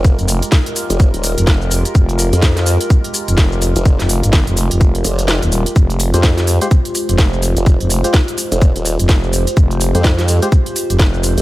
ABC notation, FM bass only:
X:1
M:4/4
L:1/16
Q:"Swing 16ths" 1/4=126
K:Fm
V:1 name="FM bass" clef=bass
z F,,,2 z8 F,,,4 z | F,,,3 z8 F,,,4 z | z F,,,2 G,,,2 F,,,2 F,,,3 z3 E,,,2 z | F,,,3 z8 F,,,4 z |
z F,,,2 z8 F,,,4 z | F,,,3 z8 F,,,4 z |]